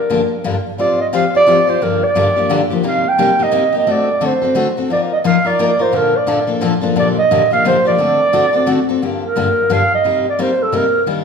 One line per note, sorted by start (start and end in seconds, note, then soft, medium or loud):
0.00 0.44 A#4 medium
0.10 0.20 G2 medium
0.10 0.20 D3 medium
0.10 0.20 F3 medium
0.10 0.20 A#3 medium
0.10 0.21 D4 medium
0.10 0.21 G4 medium
0.44 0.55 G2 medium
0.44 0.55 D3 medium
0.44 0.55 F3 medium
0.44 0.55 A#3 medium
0.44 0.55 D4 medium
0.44 0.55 G4 medium
0.78 0.99 F3 medium
0.78 0.99 C4 medium
0.78 0.99 F4 medium
0.78 0.99 G4 medium
0.78 0.99 C5 medium
0.78 0.98 D5 medium
1.01 1.06 D#5 medium
1.13 1.23 F3 medium
1.13 1.23 C4 medium
1.13 1.24 F4 medium
1.13 1.24 G4 loud
1.13 1.24 C5 medium
1.13 1.33 F5 medium
1.35 1.46 F4 soft
1.35 1.47 G4 soft
1.35 1.47 C5 medium
1.35 1.71 D5 loud
1.47 1.57 F3 medium
1.47 1.58 C4 medium
1.47 1.58 F4 medium
1.47 1.58 G4 loud
1.47 1.58 C5 medium
1.67 1.81 F4 soft
1.67 1.81 G4 soft
1.67 1.80 C5 medium
1.67 1.84 C5 medium
1.81 2.02 G2 medium
1.81 2.02 D3 soft
1.81 2.02 F3 medium
1.81 2.02 A#3 medium
1.81 2.03 D4 medium
1.81 2.02 G4 medium
1.81 2.05 A#4 medium
2.04 2.71 D5 medium
2.15 2.26 G2 medium
2.15 2.26 D3 medium
2.15 2.26 F3 medium
2.15 2.27 A#3 medium
2.15 2.27 D4 loud
2.15 2.27 G4 medium
2.36 2.49 F3 soft
2.36 2.49 A#3 soft
2.36 2.49 D4 medium
2.36 2.49 G4 medium
2.49 2.60 G2 medium
2.49 2.61 D3 medium
2.49 2.61 F3 medium
2.49 2.61 A#3 medium
2.49 2.61 D4 loud
2.49 2.61 G4 medium
2.70 2.83 F3 medium
2.70 2.83 A#3 soft
2.70 2.84 D4 medium
2.70 2.83 G4 medium
2.83 3.04 C3 medium
2.83 3.05 G3 medium
2.83 3.05 A#3 medium
2.83 3.05 D#4 medium
2.83 3.05 G4 medium
2.83 3.10 F5 medium
3.08 3.44 G5 loud
3.18 3.29 C3 medium
3.18 3.29 G3 medium
3.18 3.29 A#3 medium
3.18 3.30 D#4 medium
3.18 3.30 G4 medium
3.39 3.51 A#3 soft
3.39 3.51 D#4 medium
3.39 3.52 G4 medium
3.39 3.75 D#5 loud
3.52 3.63 C3 medium
3.52 3.63 G3 medium
3.52 3.63 A#3 loud
3.52 3.63 D#4 medium
3.52 3.64 G4 medium
3.72 3.86 A#3 soft
3.72 3.87 D#4 soft
3.72 3.86 G4 medium
3.78 3.92 D#5 medium
3.87 4.08 D3 medium
3.87 4.08 A3 medium
3.87 4.08 C4 medium
3.87 4.08 F#4 medium
3.87 4.08 A4 medium
3.91 4.27 D5 medium
4.21 4.32 D3 medium
4.21 4.32 A3 medium
4.21 4.32 C4 medium
4.21 4.32 F#4 medium
4.21 4.33 A4 medium
4.26 4.79 C5 medium
4.42 4.54 C4 soft
4.42 4.55 F#4 soft
4.42 4.55 A4 medium
4.55 4.66 D3 medium
4.55 4.67 A3 medium
4.55 4.67 C4 medium
4.55 4.67 F#4 medium
4.55 4.67 A4 medium
4.77 4.90 C4 soft
4.77 4.90 F#4 medium
4.77 4.90 A4 medium
4.90 5.11 F3 medium
4.90 5.11 A#3 medium
4.90 5.11 D#4 medium
4.90 5.11 F4 medium
4.90 5.11 A#4 medium
4.90 5.01 D5 medium
5.13 5.19 D#5 medium
5.24 5.35 F3 medium
5.24 5.35 A#3 medium
5.24 5.36 D#4 medium
5.24 5.36 F4 medium
5.24 5.36 A#4 medium
5.24 5.48 F5 medium
5.45 5.58 D#4 soft
5.45 5.58 F4 medium
5.45 5.58 A#4 medium
5.45 5.83 D5 loud
5.59 5.70 F3 medium
5.59 5.70 A#3 medium
5.59 5.70 D#4 medium
5.59 5.70 F4 medium
5.59 5.70 A#4 loud
5.79 5.93 D#4 soft
5.79 5.92 F4 soft
5.79 5.92 A#4 medium
5.79 5.97 C5 medium
5.92 6.13 A#2 medium
5.92 6.13 D3 medium
5.92 6.13 F3 medium
5.92 6.14 A#3 medium
5.92 6.14 D4 medium
5.92 6.14 A4 medium
5.96 6.18 A#4 medium
6.17 6.55 D5 medium
6.27 6.38 A#2 medium
6.27 6.38 D3 medium
6.27 6.38 F3 medium
6.27 6.38 A#3 medium
6.27 6.38 D4 medium
6.27 6.39 A4 medium
6.47 6.60 F3 soft
6.47 6.61 A#3 medium
6.47 6.61 D4 medium
6.47 6.60 A4 medium
6.61 6.72 A#2 medium
6.61 6.72 D3 medium
6.61 6.72 F3 medium
6.61 6.73 A#3 medium
6.61 6.73 D4 loud
6.61 6.73 A4 medium
6.81 6.95 F3 soft
6.81 6.95 A#3 medium
6.81 6.95 D4 medium
6.81 6.95 A4 medium
6.96 7.16 A#2 medium
6.96 7.16 D3 medium
6.96 7.17 F3 medium
6.96 7.16 A#3 medium
6.96 7.17 D4 medium
6.96 7.17 G4 medium
6.96 7.08 D5 medium
7.18 7.49 D#5 loud
7.31 7.41 A#2 medium
7.31 7.41 D3 medium
7.31 7.42 F3 medium
7.31 7.42 A#3 medium
7.31 7.42 D4 loud
7.31 7.42 G4 medium
7.51 7.64 F3 soft
7.51 7.64 A#3 medium
7.51 7.64 D4 medium
7.51 7.64 G4 medium
7.51 7.64 F5 loud
7.65 7.75 A#2 medium
7.65 7.76 D3 medium
7.65 7.76 F3 medium
7.65 7.76 A#3 medium
7.65 7.76 D4 medium
7.65 7.76 G4 medium
7.65 7.85 C5 loud
7.85 7.98 F3 soft
7.85 7.98 A#3 medium
7.85 7.98 D4 soft
7.85 7.98 G4 medium
7.85 8.85 D5 loud
7.98 8.19 D3 medium
7.98 8.19 A3 medium
7.98 8.19 C4 medium
7.98 8.20 F#4 medium
7.98 8.20 A4 medium
8.33 8.44 D3 medium
8.33 8.44 A3 medium
8.33 8.44 C4 medium
8.33 8.44 F#4 loud
8.33 8.44 A4 medium
8.53 8.66 C4 soft
8.53 8.67 F#4 soft
8.53 8.66 A4 medium
8.66 8.78 D3 medium
8.66 8.78 A3 medium
8.66 8.78 C4 medium
8.66 8.78 F#4 medium
8.66 8.78 A4 medium
8.89 9.02 C4 soft
8.89 9.02 F#4 medium
8.89 9.01 A4 medium
9.02 9.22 G2 medium
9.02 9.23 D3 medium
9.02 9.23 F3 soft
9.02 9.23 A#3 medium
9.02 9.23 D4 medium
9.02 9.23 G4 medium
9.25 9.74 A#4 medium
9.36 9.47 G2 medium
9.36 9.47 D3 medium
9.36 9.47 F3 medium
9.36 9.47 A#3 medium
9.36 9.47 D4 medium
9.36 9.47 G4 medium
9.70 9.81 G2 medium
9.70 9.81 D3 medium
9.70 9.81 F3 medium
9.70 9.81 A#3 medium
9.70 9.81 D4 medium
9.70 9.81 G4 medium
9.70 9.92 F5 loud
9.94 10.24 D#5 medium
10.04 10.25 C3 medium
10.04 10.25 G3 medium
10.04 10.25 A#3 medium
10.04 10.26 D#4 medium
10.04 10.26 G4 medium
10.29 10.42 D5 medium
10.39 10.49 C3 medium
10.39 10.49 G3 medium
10.39 10.50 A#3 medium
10.39 10.50 D#4 medium
10.39 10.50 G4 medium
10.39 10.64 C5 medium
10.63 10.77 A4 medium
10.72 10.83 C3 medium
10.72 10.83 G3 medium
10.72 10.84 A#3 medium
10.72 10.84 D#4 medium
10.72 10.84 G4 medium
10.72 11.02 A#4 medium
11.06 11.24 D#3 medium
11.06 11.24 G3 medium
11.06 11.24 A#3 medium
11.06 11.24 D4 medium
11.06 11.24 G4 medium